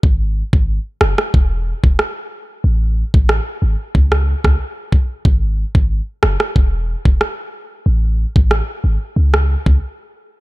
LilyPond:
<<
  \new Staff \with { instrumentName = "808-style bass" } { \clef bass \time 4/4 \key a \lydian \tempo 4 = 92 gis,,8. gis,,8 r16 fis,,16 r16 e,,8. e,,16 r4 | a,,8. a,,8 r16 gis,,16 r16 cis,8. cis,16 r4 | gis,,8. gis,,8 r16 fis,,16 r16 e,,8. e,,16 r4 | a,,8. a,,8 r16 gis,,16 r16 cis,8. cis,16 r4 | }
  \new DrumStaff \with { instrumentName = "Drums" } \drummode { \time 4/4 bd8. bd16 r8 ss16 ss16 bd8. bd16 ss4 | r8. bd16 ss4 bd16 ss8 <bd ss>16 r8 bd8 | bd8. bd16 r8 ss16 ss16 bd8. bd16 ss4 | r8. bd16 ss4 r16 ss8 bd16 r4 | }
>>